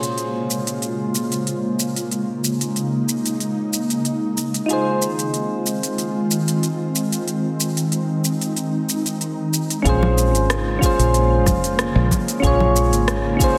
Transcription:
Already playing: A#2 C#3 G#3 A#3 C#4 F4 G#4 C5
0.03 closed hi-hat, shaker
0.18 closed hi-hat, shaker
0.50 shaker
0.67 closed hi-hat, shaker
0.82 closed hi-hat, shaker
1.15 shaker
1.32 closed hi-hat, shaker
1.47 closed hi-hat, shaker
1.79 shaker
1.96 closed hi-hat, shaker
2.11 D#4, closed hi-hat, shaker
2.44 shaker
2.61 closed hi-hat, shaker
2.76 closed hi-hat, shaker
3.09 shaker
3.26 closed hi-hat, shaker
3.40 closed hi-hat, shaker
3.73 shaker
3.90 closed hi-hat, shaker
4.05 closed hi-hat, shaker
4.37 shaker
4.54 closed hi-hat, shaker
4.66 D#3 C4 D#4 F4, closed hi-hat, shaker
4.71 G#4 C5
5.02 shaker
5.19 closed hi-hat, shaker
5.34 closed hi-hat, shaker
5.66 shaker
5.83 closed hi-hat, shaker
5.98 closed hi-hat, shaker
6.31 shaker
6.48 closed hi-hat, shaker
6.63 closed hi-hat, shaker
6.95 shaker
7.12 closed hi-hat, shaker
7.27 D#4, closed hi-hat, shaker
7.60 shaker
7.77 closed hi-hat, shaker
7.92 closed hi-hat, shaker
8.24 shaker
8.41 closed hi-hat, shaker
8.56 closed hi-hat, shaker
8.89 shaker
9.06 closed hi-hat, shaker
9.21 closed hi-hat, shaker
9.53 shaker
9.70 closed hi-hat, shaker
9.82 A#1 C#3 G#3 A#3 C#4 F4, kick, closed hi-hat, shaker
9.87 G#4 C5
10.03 low conga
10.18 shaker
10.34 G#1, closed hi-hat, shaker
10.50 cross-stick, closed hi-hat, shaker
10.79 C#4 F4, kick, shaker
10.83 G#4 C5
10.99 A#1, closed hi-hat, shaker
11.14 closed hi-hat, shaker
11.46 F1, kick, cross-stick, low conga, shaker
11.64 closed hi-hat, shaker
11.79 cross-stick, closed hi-hat, shaker
11.96 A#1
12.11 kick, low conga, shaker
12.28 closed hi-hat, shaker
12.40 A#1 C#4 D#4 F4, kick, closed hi-hat, shaker
12.44 G#4 C#5
12.60 low conga
12.76 shaker
12.93 G#1, closed hi-hat, shaker
13.08 cross-stick, closed hi-hat, shaker
13.37 C#4 F4, kick, shaker
13.41 G#4 C5

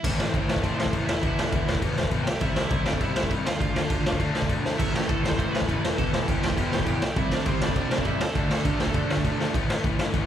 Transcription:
0.03 A1 A2 E3 A3 C4 C5, kick, crash
0.18 A1, snare
0.33 A1 A2 E3 A3, kick, crash
0.48 A1 B3 B4, snare
0.56 kick
0.62 A1 A2 E3 A3 C4 C5, kick, crash
0.78 A1, snare
0.86 kick
0.92 A1 A2 E3 A3, kick, crash
1.06 E1 E4 E5, snare
1.21 E1 E2 B2 E3 E4 E5, kick, crash
1.38 E1, snare
1.51 E1 E2 B2 E3, kick, crash
1.67 E1, snare
1.75 kick
1.81 E1 E2 B2 E3, kick, crash
1.96 E1, snare
2.04 kick
2.11 E1 E2 B2 E3, kick, crash
2.24 C2 G4 G5, snare
2.39 C2 C3 G3 C4 E4 E5, kick, crash
2.56 C2, snare
2.70 C2 C3 G3 C4, kick, crash
2.84 C2 D4 D5, snare
2.93 kick
2.99 C2 C3 G3 C4 E4 E5, kick, crash
3.16 C2, snare
3.23 kick
3.29 C2 C3 G3 C4, kick, crash
3.45 D2 F4 F5, snare
3.59 D2 D3 A3 D4 F4 F5, kick, crash
3.75 D2, snare
3.89 D2 D3 A3 D4, kick, crash
4.04 D2, snare
4.12 kick
4.18 D2 D3 A3 D4, kick, crash
4.34 D2, snare
4.42 kick
4.48 D2 D3 A3 D4, kick, crash
4.64 D2, snare
4.78 A1 A2 E3 A3 E4 E5, kick, crash
4.94 A1 G4 G5, snare
5.08 A1 A2 E3 A3 A4 A5, kick, crash
5.23 A1 C5 C6, snare
5.32 kick
5.38 A1 A2 E3 A3, kick, crash
5.53 A1 B4 B5, snare
5.62 kick
5.68 A1 A2 E3 A3, kick, crash
5.84 E1, snare
5.97 E1 E2 B2 E3 A4 A5, kick, crash
6.13 E1, snare
6.27 E1 E2 B2 E3 G4 G5, kick, crash
6.43 E1 G4 G5, snare
6.50 kick
6.57 E1 E2 B2 E3, kick, crash
6.72 E1, snare
6.80 kick
6.86 E1 E2 B2 E3, kick, crash
7.02 C2 G4 G5, snare
7.16 C2 C3 G3 C4 E4 E5, kick, crash
7.31 C2 D4 D5, snare
7.46 C2 C3 G3 C4 C5, kick, crash
7.61 C2 D4 D5, snare
7.69 kick
7.76 C2 C3 G3 C4, kick, crash
7.90 C2, snare
7.98 kick
8.05 C2 C3 G3 C4 E4 E5, kick, crash
8.20 D2 A4 A5, snare
8.35 D2 D3 A3 D4, kick, crash
8.50 D2, snare
8.64 D2 D3 A3 D4, kick, crash
8.79 D2, snare
8.87 kick
8.94 D2 D3 A3 D4, kick, crash
9.09 D2, snare
9.17 kick
9.24 D2 D3 A3 D4, kick, crash
9.39 D2, snare
9.53 A1 A2 E3 A3, kick, crash
9.69 A1, snare
9.83 A1 A2 E3 A3, kick, crash
9.98 G2, snare
10.13 A1 A2 E3 A3, kick, crash

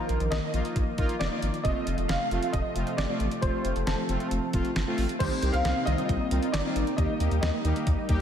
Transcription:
Already playing: D#3 F3 A#3 D#4 F4 A#4
0.09 A#1, closed hi-hat
0.20 A#1, closed hi-hat
0.30 A#1 D#5, snare, closed hi-hat
0.54 A#1 A#3 D#4 F4, closed hi-hat
0.65 closed hi-hat
0.76 A#1, kick, closed hi-hat
0.98 A#1 A#3 D#4 F4, kick, closed hi-hat
1.09 closed hi-hat
1.19 F1 D5, snare, closed hi-hat
1.31 A#3 D#4 F4
1.42 G#1, closed hi-hat
1.54 closed hi-hat
1.64 F1 C3 F3 A3 C4 F4 D#5, kick, closed hi-hat
1.87 F1, closed hi-hat
1.98 F1, closed hi-hat
2.08 F1 F5, snare, closed hi-hat
2.31 F1 A3 C4 F4, closed hi-hat
2.43 closed hi-hat
2.52 F1 D#5, kick, closed hi-hat
2.76 F1 A3 C4 F4, closed hi-hat
2.87 closed hi-hat
2.97 G1 D5, snare, closed hi-hat
3.09 A3 C4 F4
3.20 A1, closed hi-hat
3.31 closed hi-hat
3.42 F1 A3 C4 F4 C5, kick, closed hi-hat
3.65 F1, closed hi-hat
3.76 F1, closed hi-hat
3.86 F1 A4, snare, closed hi-hat
4.09 F1 A3 C4 F4, closed hi-hat
4.20 closed hi-hat
4.31 F1, closed hi-hat
4.53 F1 A3 C4 F4, kick, closed hi-hat
4.65 closed hi-hat
4.76 G1, snare, closed hi-hat
4.87 A3 C4 F4
4.98 A1, open hi-hat
5.09 closed hi-hat
5.19 C2 C3 D#3 G3 A#3 C4 D#4 G4 C5, kick, closed hi-hat, crash
5.31 C4
5.42 C2 C4 D#4 G4 A#4, closed hi-hat
5.53 C2 F5, closed hi-hat
5.65 C2 A#4, snare, closed hi-hat
5.76 C4
5.86 C2 D#3 C4 D#4 F4 D#5, closed hi-hat
5.98 C4, closed hi-hat
6.09 C2, kick, closed hi-hat
6.20 D#5
6.31 C2 C4 D#4 F4 A#4, closed hi-hat
6.43 C4, closed hi-hat
6.52 G1 D#3 D5, snare, clap, closed hi-hat
6.65 C4 D#4 F4
6.76 G#1 A#4, closed hi-hat
6.87 closed hi-hat
6.97 D#2 D#3 A#3 D#4 G4 D#5, kick, closed hi-hat
7.09 A#3
7.20 D#2 A#3 D#4 G4, closed hi-hat
7.31 D#2, closed hi-hat
7.41 D#2 G4 D#5, snare, closed hi-hat
7.54 A#3
7.65 D#2 D#3 A#3 D#4 G4, closed hi-hat
7.76 A#3, closed hi-hat
7.87 D#2, kick, closed hi-hat
7.98 D#5
8.09 D#2 A#3 D#4 G4, kick, closed hi-hat

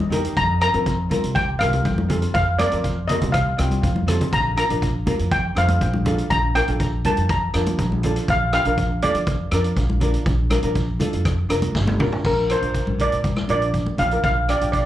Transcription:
Already playing: E2
0.00 high conga
0.10 D#4 G4 A#4, closed hi-hat, low conga
0.25 closed hi-hat
0.37 F2 A#5, kick, closed hi-hat
0.60 C4 F4 A#4 A#5, cross-stick, closed hi-hat
0.73 F2 C4 F4 A#4, closed hi-hat
0.86 kick, closed hi-hat
1.09 C4 F4 A#4, closed hi-hat, high conga, low conga
1.23 C2, closed hi-hat
1.35 G5, kick, closed hi-hat
1.59 C2 C4 F4 A#4 F5, cross-stick, closed hi-hat
1.73 closed hi-hat, high conga
1.85 F2, kick, closed hi-hat
1.98 high conga
2.09 C4 F4 A4, closed hi-hat, low conga
2.22 closed hi-hat
2.34 F2 F5, kick, closed hi-hat
2.58 C4 F4 A#4 D5, cross-stick, closed hi-hat, high conga
2.71 F2 C4 F4 A#4, closed hi-hat
2.84 kick, closed hi-hat
3.08 C4 F4 A#4 D#5, closed hi-hat, low conga
3.22 C2, closed hi-hat, low conga
3.32 F5, kick, cross-stick, closed hi-hat
3.58 C2 C4 F4 G4, cross-stick, closed hi-hat
3.71 closed hi-hat, high conga
3.83 F2, kick, closed hi-hat, high conga
3.96 high conga
4.07 C4 F4 A4, cross-stick, closed hi-hat, low conga
4.21 closed hi-hat, low conga
4.33 A#1 A#5, kick, closed hi-hat
4.56 D4 F4 A#4 A#5, cross-stick, closed hi-hat
4.69 A#1 D4 F4 A#4, closed hi-hat
4.82 kick, closed hi-hat
5.06 D4 F4 A#4, closed hi-hat, high conga, low conga
5.19 F2, closed hi-hat
5.31 G5, kick, closed hi-hat
5.55 F2 D4 F4 C5 F5, cross-stick, closed hi-hat
5.69 closed hi-hat, high conga
5.81 A#1, kick, closed hi-hat
5.93 high conga
6.05 D4 F4 A4, closed hi-hat, low conga
6.18 closed hi-hat
6.30 A#1 A#5, kick, closed hi-hat
6.55 D4 F4 A#4 G5, cross-stick, closed hi-hat
6.67 A#1 D4 F4 A4, closed hi-hat
6.80 kick, closed hi-hat
7.04 D4 F4 A#4 A5, closed hi-hat, high conga, low conga
7.17 F2, closed hi-hat
7.29 A#5, kick, closed hi-hat
7.53 F2 D4 F4 A#4, cross-stick, closed hi-hat
7.66 closed hi-hat, high conga
7.78 A#1, kick, closed hi-hat
7.92 high conga
8.03 D4 F4 A4, closed hi-hat, low conga
8.16 closed hi-hat
8.28 A#1 F5, kick, closed hi-hat
8.53 D4 F4 G4 F5, cross-stick, closed hi-hat
8.65 A#1 D4 F4 A#4, closed hi-hat
8.77 kick, closed hi-hat
9.02 D4 F4 A4 D5, closed hi-hat, high conga, low conga
9.14 F2, closed hi-hat
9.26 kick, closed hi-hat
9.51 F2 D4 F4 A#4, cross-stick, closed hi-hat
9.64 closed hi-hat
9.76 A#1, kick, closed hi-hat
9.90 high conga
10.00 D4 F4 A#4, closed hi-hat, low conga
10.14 closed hi-hat
10.26 A#1, kick, closed hi-hat
10.50 D4 F4 A#4, cross-stick, closed hi-hat, high conga
10.62 A#1 D4 F4 A#4, closed hi-hat
10.75 kick, closed hi-hat
10.99 D4 F4 A4, closed hi-hat, high conga, low conga
11.13 F2, closed hi-hat
11.25 kick, cross-stick, closed hi-hat
11.49 F1 D4 F4 A#4, cross-stick, closed hi-hat
11.62 closed hi-hat, high conga
11.75 G1, kick, snare
11.87 high tom, high conga
11.99 A1 D4 F4 A#4, mid tom, low conga
12.12 floor tom
12.24 A#1 A#4, kick, crash
12.49 D4 F4 A#4 C5, cross-stick, closed hi-hat
12.61 A#1 D4 F4 A#4, closed hi-hat
12.74 kick, closed hi-hat
12.87 A#1, high conga
12.98 D4 F4 A#4 D5, closed hi-hat, low conga
13.12 A#2, closed hi-hat
13.24 kick, closed hi-hat, high conga
13.36 cross-stick, high conga
13.47 A#1 D4 F4 A#4 D5, closed hi-hat
13.62 closed hi-hat
13.74 kick, closed hi-hat
13.86 high conga
13.97 A#1 D4 F4 G4 F5, closed hi-hat, low conga
14.10 D4 F4 A#4, closed hi-hat
14.24 A#1 F5, kick, closed hi-hat
14.48 D4 F4 G4 D5, cross-stick, closed hi-hat
14.60 A#1 D4 F4 G4, closed hi-hat
14.72 D5, kick, closed hi-hat

